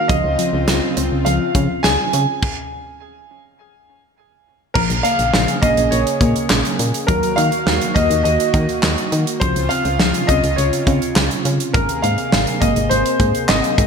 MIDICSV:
0, 0, Header, 1, 6, 480
1, 0, Start_track
1, 0, Key_signature, -5, "minor"
1, 0, Tempo, 582524
1, 77, Time_signature, 4, 2, 24, 8
1, 11428, End_track
2, 0, Start_track
2, 0, Title_t, "Grand piano"
2, 0, Program_c, 0, 0
2, 67, Note_on_c, 0, 75, 90
2, 759, Note_off_c, 0, 75, 0
2, 1028, Note_on_c, 0, 77, 88
2, 1480, Note_off_c, 0, 77, 0
2, 1507, Note_on_c, 0, 80, 103
2, 1847, Note_off_c, 0, 80, 0
2, 3907, Note_on_c, 0, 70, 96
2, 3962, Note_off_c, 0, 70, 0
2, 4147, Note_on_c, 0, 77, 112
2, 4628, Note_on_c, 0, 75, 99
2, 4647, Note_off_c, 0, 77, 0
2, 4868, Note_on_c, 0, 73, 82
2, 4880, Note_off_c, 0, 75, 0
2, 5560, Note_off_c, 0, 73, 0
2, 5824, Note_on_c, 0, 70, 95
2, 6064, Note_on_c, 0, 77, 110
2, 6078, Note_off_c, 0, 70, 0
2, 6546, Note_on_c, 0, 75, 103
2, 6565, Note_off_c, 0, 77, 0
2, 6774, Note_off_c, 0, 75, 0
2, 6786, Note_on_c, 0, 75, 90
2, 7479, Note_off_c, 0, 75, 0
2, 7745, Note_on_c, 0, 72, 95
2, 7984, Note_on_c, 0, 77, 111
2, 7999, Note_off_c, 0, 72, 0
2, 8464, Note_on_c, 0, 75, 100
2, 8486, Note_off_c, 0, 77, 0
2, 8703, Note_on_c, 0, 73, 82
2, 8719, Note_off_c, 0, 75, 0
2, 9397, Note_off_c, 0, 73, 0
2, 9669, Note_on_c, 0, 70, 88
2, 9908, Note_on_c, 0, 77, 94
2, 9921, Note_off_c, 0, 70, 0
2, 10386, Note_on_c, 0, 75, 88
2, 10407, Note_off_c, 0, 77, 0
2, 10626, Note_on_c, 0, 72, 86
2, 10639, Note_off_c, 0, 75, 0
2, 11107, Note_on_c, 0, 75, 92
2, 11126, Note_off_c, 0, 72, 0
2, 11428, Note_off_c, 0, 75, 0
2, 11428, End_track
3, 0, Start_track
3, 0, Title_t, "Analog synth pad"
3, 0, Program_c, 1, 89
3, 77, Note_on_c, 1, 49, 81
3, 77, Note_on_c, 1, 60, 73
3, 78, Note_on_c, 1, 65, 90
3, 1978, Note_off_c, 1, 49, 0
3, 1978, Note_off_c, 1, 60, 0
3, 1979, Note_off_c, 1, 65, 0
3, 3919, Note_on_c, 1, 49, 80
3, 3920, Note_on_c, 1, 58, 72
3, 3920, Note_on_c, 1, 68, 92
3, 5819, Note_off_c, 1, 49, 0
3, 5820, Note_off_c, 1, 58, 0
3, 5820, Note_off_c, 1, 68, 0
3, 5839, Note_on_c, 1, 58, 75
3, 5840, Note_on_c, 1, 51, 81
3, 5840, Note_on_c, 1, 66, 89
3, 7739, Note_off_c, 1, 58, 0
3, 7740, Note_off_c, 1, 51, 0
3, 7740, Note_off_c, 1, 66, 0
3, 7757, Note_on_c, 1, 48, 75
3, 7757, Note_on_c, 1, 49, 85
3, 7757, Note_on_c, 1, 65, 90
3, 9658, Note_off_c, 1, 48, 0
3, 9658, Note_off_c, 1, 49, 0
3, 9658, Note_off_c, 1, 65, 0
3, 9673, Note_on_c, 1, 58, 73
3, 9674, Note_on_c, 1, 48, 79
3, 9675, Note_on_c, 1, 68, 88
3, 11428, Note_off_c, 1, 48, 0
3, 11428, Note_off_c, 1, 58, 0
3, 11428, Note_off_c, 1, 68, 0
3, 11428, End_track
4, 0, Start_track
4, 0, Title_t, "Synth pluck"
4, 0, Program_c, 2, 84
4, 78, Note_on_c, 2, 53, 93
4, 200, Note_off_c, 2, 53, 0
4, 319, Note_on_c, 2, 53, 76
4, 441, Note_off_c, 2, 53, 0
4, 801, Note_on_c, 2, 60, 95
4, 922, Note_off_c, 2, 60, 0
4, 1041, Note_on_c, 2, 53, 77
4, 1162, Note_off_c, 2, 53, 0
4, 1280, Note_on_c, 2, 53, 72
4, 1401, Note_off_c, 2, 53, 0
4, 1519, Note_on_c, 2, 68, 95
4, 1641, Note_off_c, 2, 68, 0
4, 1758, Note_on_c, 2, 61, 81
4, 1880, Note_off_c, 2, 61, 0
4, 3918, Note_on_c, 2, 53, 93
4, 4039, Note_off_c, 2, 53, 0
4, 4157, Note_on_c, 2, 58, 79
4, 4279, Note_off_c, 2, 58, 0
4, 4398, Note_on_c, 2, 53, 78
4, 4520, Note_off_c, 2, 53, 0
4, 4637, Note_on_c, 2, 58, 96
4, 4759, Note_off_c, 2, 58, 0
4, 5118, Note_on_c, 2, 58, 76
4, 5240, Note_off_c, 2, 58, 0
4, 5357, Note_on_c, 2, 61, 94
4, 5479, Note_off_c, 2, 61, 0
4, 5598, Note_on_c, 2, 61, 78
4, 5719, Note_off_c, 2, 61, 0
4, 5837, Note_on_c, 2, 54, 93
4, 5959, Note_off_c, 2, 54, 0
4, 6078, Note_on_c, 2, 58, 83
4, 6200, Note_off_c, 2, 58, 0
4, 6318, Note_on_c, 2, 54, 77
4, 6440, Note_off_c, 2, 54, 0
4, 6558, Note_on_c, 2, 58, 92
4, 6680, Note_off_c, 2, 58, 0
4, 7038, Note_on_c, 2, 58, 77
4, 7160, Note_off_c, 2, 58, 0
4, 7278, Note_on_c, 2, 63, 97
4, 7399, Note_off_c, 2, 63, 0
4, 7519, Note_on_c, 2, 63, 79
4, 7640, Note_off_c, 2, 63, 0
4, 7758, Note_on_c, 2, 53, 92
4, 7880, Note_off_c, 2, 53, 0
4, 7998, Note_on_c, 2, 60, 81
4, 8119, Note_off_c, 2, 60, 0
4, 8239, Note_on_c, 2, 53, 77
4, 8360, Note_off_c, 2, 53, 0
4, 8478, Note_on_c, 2, 60, 96
4, 8599, Note_off_c, 2, 60, 0
4, 8958, Note_on_c, 2, 60, 76
4, 9079, Note_off_c, 2, 60, 0
4, 9197, Note_on_c, 2, 61, 93
4, 9319, Note_off_c, 2, 61, 0
4, 9438, Note_on_c, 2, 61, 81
4, 9560, Note_off_c, 2, 61, 0
4, 9678, Note_on_c, 2, 51, 91
4, 9800, Note_off_c, 2, 51, 0
4, 9918, Note_on_c, 2, 58, 79
4, 10040, Note_off_c, 2, 58, 0
4, 10159, Note_on_c, 2, 51, 77
4, 10281, Note_off_c, 2, 51, 0
4, 10397, Note_on_c, 2, 58, 93
4, 10519, Note_off_c, 2, 58, 0
4, 10878, Note_on_c, 2, 58, 78
4, 11000, Note_off_c, 2, 58, 0
4, 11118, Note_on_c, 2, 60, 96
4, 11240, Note_off_c, 2, 60, 0
4, 11359, Note_on_c, 2, 60, 81
4, 11428, Note_off_c, 2, 60, 0
4, 11428, End_track
5, 0, Start_track
5, 0, Title_t, "FM bass"
5, 0, Program_c, 3, 39
5, 78, Note_on_c, 3, 37, 104
5, 185, Note_off_c, 3, 37, 0
5, 199, Note_on_c, 3, 37, 98
5, 306, Note_off_c, 3, 37, 0
5, 439, Note_on_c, 3, 37, 106
5, 546, Note_off_c, 3, 37, 0
5, 559, Note_on_c, 3, 37, 96
5, 666, Note_off_c, 3, 37, 0
5, 800, Note_on_c, 3, 37, 107
5, 906, Note_off_c, 3, 37, 0
5, 921, Note_on_c, 3, 37, 92
5, 1027, Note_off_c, 3, 37, 0
5, 1040, Note_on_c, 3, 37, 108
5, 1147, Note_off_c, 3, 37, 0
5, 1276, Note_on_c, 3, 49, 103
5, 1384, Note_off_c, 3, 49, 0
5, 1520, Note_on_c, 3, 37, 104
5, 1626, Note_off_c, 3, 37, 0
5, 1760, Note_on_c, 3, 49, 101
5, 1866, Note_off_c, 3, 49, 0
5, 3917, Note_on_c, 3, 34, 106
5, 4025, Note_off_c, 3, 34, 0
5, 4037, Note_on_c, 3, 34, 115
5, 4145, Note_off_c, 3, 34, 0
5, 4278, Note_on_c, 3, 34, 98
5, 4385, Note_off_c, 3, 34, 0
5, 4397, Note_on_c, 3, 34, 107
5, 4505, Note_off_c, 3, 34, 0
5, 4636, Note_on_c, 3, 34, 105
5, 4744, Note_off_c, 3, 34, 0
5, 4757, Note_on_c, 3, 34, 98
5, 4865, Note_off_c, 3, 34, 0
5, 4877, Note_on_c, 3, 34, 111
5, 4985, Note_off_c, 3, 34, 0
5, 5115, Note_on_c, 3, 46, 93
5, 5224, Note_off_c, 3, 46, 0
5, 5357, Note_on_c, 3, 34, 103
5, 5465, Note_off_c, 3, 34, 0
5, 5597, Note_on_c, 3, 46, 100
5, 5705, Note_off_c, 3, 46, 0
5, 5837, Note_on_c, 3, 39, 113
5, 5945, Note_off_c, 3, 39, 0
5, 6077, Note_on_c, 3, 51, 110
5, 6185, Note_off_c, 3, 51, 0
5, 6317, Note_on_c, 3, 39, 96
5, 6425, Note_off_c, 3, 39, 0
5, 6556, Note_on_c, 3, 39, 95
5, 6665, Note_off_c, 3, 39, 0
5, 6677, Note_on_c, 3, 39, 108
5, 6785, Note_off_c, 3, 39, 0
5, 6797, Note_on_c, 3, 39, 109
5, 6905, Note_off_c, 3, 39, 0
5, 7036, Note_on_c, 3, 51, 108
5, 7144, Note_off_c, 3, 51, 0
5, 7278, Note_on_c, 3, 39, 99
5, 7385, Note_off_c, 3, 39, 0
5, 7518, Note_on_c, 3, 51, 104
5, 7625, Note_off_c, 3, 51, 0
5, 7758, Note_on_c, 3, 37, 109
5, 7865, Note_off_c, 3, 37, 0
5, 7878, Note_on_c, 3, 37, 97
5, 7986, Note_off_c, 3, 37, 0
5, 8118, Note_on_c, 3, 37, 108
5, 8225, Note_off_c, 3, 37, 0
5, 8238, Note_on_c, 3, 37, 95
5, 8346, Note_off_c, 3, 37, 0
5, 8476, Note_on_c, 3, 37, 106
5, 8585, Note_off_c, 3, 37, 0
5, 8598, Note_on_c, 3, 37, 94
5, 8705, Note_off_c, 3, 37, 0
5, 8718, Note_on_c, 3, 37, 107
5, 8825, Note_off_c, 3, 37, 0
5, 8956, Note_on_c, 3, 49, 102
5, 9064, Note_off_c, 3, 49, 0
5, 9197, Note_on_c, 3, 37, 105
5, 9305, Note_off_c, 3, 37, 0
5, 9436, Note_on_c, 3, 49, 99
5, 9545, Note_off_c, 3, 49, 0
5, 9677, Note_on_c, 3, 32, 106
5, 9785, Note_off_c, 3, 32, 0
5, 9917, Note_on_c, 3, 44, 98
5, 10025, Note_off_c, 3, 44, 0
5, 10158, Note_on_c, 3, 32, 110
5, 10265, Note_off_c, 3, 32, 0
5, 10395, Note_on_c, 3, 32, 97
5, 10504, Note_off_c, 3, 32, 0
5, 10517, Note_on_c, 3, 32, 97
5, 10625, Note_off_c, 3, 32, 0
5, 10637, Note_on_c, 3, 32, 107
5, 10745, Note_off_c, 3, 32, 0
5, 10875, Note_on_c, 3, 44, 103
5, 10984, Note_off_c, 3, 44, 0
5, 11117, Note_on_c, 3, 32, 100
5, 11225, Note_off_c, 3, 32, 0
5, 11356, Note_on_c, 3, 44, 101
5, 11428, Note_off_c, 3, 44, 0
5, 11428, End_track
6, 0, Start_track
6, 0, Title_t, "Drums"
6, 78, Note_on_c, 9, 36, 109
6, 78, Note_on_c, 9, 42, 68
6, 160, Note_off_c, 9, 36, 0
6, 160, Note_off_c, 9, 42, 0
6, 320, Note_on_c, 9, 42, 78
6, 402, Note_off_c, 9, 42, 0
6, 557, Note_on_c, 9, 42, 66
6, 558, Note_on_c, 9, 38, 108
6, 640, Note_off_c, 9, 38, 0
6, 640, Note_off_c, 9, 42, 0
6, 798, Note_on_c, 9, 42, 66
6, 881, Note_off_c, 9, 42, 0
6, 1040, Note_on_c, 9, 42, 76
6, 1122, Note_off_c, 9, 42, 0
6, 1276, Note_on_c, 9, 36, 94
6, 1277, Note_on_c, 9, 42, 69
6, 1358, Note_off_c, 9, 36, 0
6, 1359, Note_off_c, 9, 42, 0
6, 1518, Note_on_c, 9, 38, 121
6, 1518, Note_on_c, 9, 42, 71
6, 1600, Note_off_c, 9, 38, 0
6, 1601, Note_off_c, 9, 42, 0
6, 1758, Note_on_c, 9, 42, 78
6, 1840, Note_off_c, 9, 42, 0
6, 1998, Note_on_c, 9, 36, 107
6, 1998, Note_on_c, 9, 49, 90
6, 2081, Note_off_c, 9, 36, 0
6, 2081, Note_off_c, 9, 49, 0
6, 3917, Note_on_c, 9, 49, 98
6, 3918, Note_on_c, 9, 36, 106
6, 4000, Note_off_c, 9, 36, 0
6, 4000, Note_off_c, 9, 49, 0
6, 4038, Note_on_c, 9, 42, 63
6, 4120, Note_off_c, 9, 42, 0
6, 4159, Note_on_c, 9, 42, 81
6, 4242, Note_off_c, 9, 42, 0
6, 4277, Note_on_c, 9, 42, 44
6, 4359, Note_off_c, 9, 42, 0
6, 4396, Note_on_c, 9, 38, 108
6, 4479, Note_off_c, 9, 38, 0
6, 4518, Note_on_c, 9, 42, 59
6, 4600, Note_off_c, 9, 42, 0
6, 4635, Note_on_c, 9, 36, 83
6, 4636, Note_on_c, 9, 42, 67
6, 4718, Note_off_c, 9, 36, 0
6, 4719, Note_off_c, 9, 42, 0
6, 4757, Note_on_c, 9, 42, 58
6, 4839, Note_off_c, 9, 42, 0
6, 4878, Note_on_c, 9, 42, 74
6, 4960, Note_off_c, 9, 42, 0
6, 5000, Note_on_c, 9, 42, 62
6, 5082, Note_off_c, 9, 42, 0
6, 5115, Note_on_c, 9, 36, 98
6, 5116, Note_on_c, 9, 42, 71
6, 5197, Note_off_c, 9, 36, 0
6, 5199, Note_off_c, 9, 42, 0
6, 5238, Note_on_c, 9, 42, 56
6, 5320, Note_off_c, 9, 42, 0
6, 5356, Note_on_c, 9, 38, 120
6, 5356, Note_on_c, 9, 39, 101
6, 5439, Note_off_c, 9, 38, 0
6, 5439, Note_off_c, 9, 39, 0
6, 5479, Note_on_c, 9, 42, 49
6, 5562, Note_off_c, 9, 42, 0
6, 5597, Note_on_c, 9, 42, 80
6, 5680, Note_off_c, 9, 42, 0
6, 5721, Note_on_c, 9, 42, 61
6, 5803, Note_off_c, 9, 42, 0
6, 5837, Note_on_c, 9, 36, 112
6, 5838, Note_on_c, 9, 42, 67
6, 5920, Note_off_c, 9, 36, 0
6, 5920, Note_off_c, 9, 42, 0
6, 5958, Note_on_c, 9, 42, 63
6, 6040, Note_off_c, 9, 42, 0
6, 6080, Note_on_c, 9, 42, 84
6, 6162, Note_off_c, 9, 42, 0
6, 6196, Note_on_c, 9, 42, 45
6, 6279, Note_off_c, 9, 42, 0
6, 6318, Note_on_c, 9, 38, 105
6, 6400, Note_off_c, 9, 38, 0
6, 6439, Note_on_c, 9, 42, 61
6, 6521, Note_off_c, 9, 42, 0
6, 6557, Note_on_c, 9, 36, 85
6, 6559, Note_on_c, 9, 42, 70
6, 6639, Note_off_c, 9, 36, 0
6, 6641, Note_off_c, 9, 42, 0
6, 6680, Note_on_c, 9, 42, 55
6, 6762, Note_off_c, 9, 42, 0
6, 6800, Note_on_c, 9, 42, 74
6, 6883, Note_off_c, 9, 42, 0
6, 6921, Note_on_c, 9, 42, 64
6, 7004, Note_off_c, 9, 42, 0
6, 7036, Note_on_c, 9, 36, 100
6, 7036, Note_on_c, 9, 42, 71
6, 7118, Note_off_c, 9, 36, 0
6, 7119, Note_off_c, 9, 42, 0
6, 7159, Note_on_c, 9, 42, 55
6, 7242, Note_off_c, 9, 42, 0
6, 7277, Note_on_c, 9, 38, 119
6, 7277, Note_on_c, 9, 39, 103
6, 7360, Note_off_c, 9, 38, 0
6, 7360, Note_off_c, 9, 39, 0
6, 7399, Note_on_c, 9, 42, 48
6, 7482, Note_off_c, 9, 42, 0
6, 7517, Note_on_c, 9, 42, 80
6, 7599, Note_off_c, 9, 42, 0
6, 7640, Note_on_c, 9, 42, 64
6, 7723, Note_off_c, 9, 42, 0
6, 7758, Note_on_c, 9, 36, 109
6, 7758, Note_on_c, 9, 42, 68
6, 7840, Note_off_c, 9, 36, 0
6, 7840, Note_off_c, 9, 42, 0
6, 7878, Note_on_c, 9, 42, 62
6, 7960, Note_off_c, 9, 42, 0
6, 7998, Note_on_c, 9, 42, 79
6, 8080, Note_off_c, 9, 42, 0
6, 8116, Note_on_c, 9, 42, 45
6, 8199, Note_off_c, 9, 42, 0
6, 8236, Note_on_c, 9, 38, 110
6, 8318, Note_off_c, 9, 38, 0
6, 8358, Note_on_c, 9, 42, 58
6, 8440, Note_off_c, 9, 42, 0
6, 8476, Note_on_c, 9, 36, 85
6, 8477, Note_on_c, 9, 42, 69
6, 8559, Note_off_c, 9, 36, 0
6, 8560, Note_off_c, 9, 42, 0
6, 8600, Note_on_c, 9, 42, 57
6, 8682, Note_off_c, 9, 42, 0
6, 8720, Note_on_c, 9, 42, 73
6, 8803, Note_off_c, 9, 42, 0
6, 8841, Note_on_c, 9, 42, 64
6, 8924, Note_off_c, 9, 42, 0
6, 8956, Note_on_c, 9, 36, 96
6, 8957, Note_on_c, 9, 42, 72
6, 9038, Note_off_c, 9, 36, 0
6, 9040, Note_off_c, 9, 42, 0
6, 9080, Note_on_c, 9, 42, 54
6, 9162, Note_off_c, 9, 42, 0
6, 9197, Note_on_c, 9, 38, 119
6, 9197, Note_on_c, 9, 39, 97
6, 9280, Note_off_c, 9, 38, 0
6, 9280, Note_off_c, 9, 39, 0
6, 9319, Note_on_c, 9, 42, 48
6, 9401, Note_off_c, 9, 42, 0
6, 9437, Note_on_c, 9, 42, 82
6, 9519, Note_off_c, 9, 42, 0
6, 9560, Note_on_c, 9, 42, 61
6, 9643, Note_off_c, 9, 42, 0
6, 9676, Note_on_c, 9, 42, 70
6, 9677, Note_on_c, 9, 36, 114
6, 9758, Note_off_c, 9, 42, 0
6, 9759, Note_off_c, 9, 36, 0
6, 9797, Note_on_c, 9, 42, 64
6, 9879, Note_off_c, 9, 42, 0
6, 9918, Note_on_c, 9, 42, 78
6, 10001, Note_off_c, 9, 42, 0
6, 10036, Note_on_c, 9, 42, 45
6, 10118, Note_off_c, 9, 42, 0
6, 10155, Note_on_c, 9, 38, 111
6, 10238, Note_off_c, 9, 38, 0
6, 10277, Note_on_c, 9, 42, 61
6, 10359, Note_off_c, 9, 42, 0
6, 10395, Note_on_c, 9, 36, 83
6, 10397, Note_on_c, 9, 42, 70
6, 10478, Note_off_c, 9, 36, 0
6, 10479, Note_off_c, 9, 42, 0
6, 10516, Note_on_c, 9, 42, 56
6, 10598, Note_off_c, 9, 42, 0
6, 10637, Note_on_c, 9, 42, 76
6, 10720, Note_off_c, 9, 42, 0
6, 10758, Note_on_c, 9, 42, 62
6, 10841, Note_off_c, 9, 42, 0
6, 10874, Note_on_c, 9, 36, 95
6, 10874, Note_on_c, 9, 42, 72
6, 10957, Note_off_c, 9, 36, 0
6, 10957, Note_off_c, 9, 42, 0
6, 10997, Note_on_c, 9, 42, 56
6, 11080, Note_off_c, 9, 42, 0
6, 11115, Note_on_c, 9, 38, 123
6, 11115, Note_on_c, 9, 39, 98
6, 11197, Note_off_c, 9, 38, 0
6, 11197, Note_off_c, 9, 39, 0
6, 11239, Note_on_c, 9, 42, 46
6, 11321, Note_off_c, 9, 42, 0
6, 11356, Note_on_c, 9, 36, 106
6, 11356, Note_on_c, 9, 42, 82
6, 11428, Note_off_c, 9, 36, 0
6, 11428, Note_off_c, 9, 42, 0
6, 11428, End_track
0, 0, End_of_file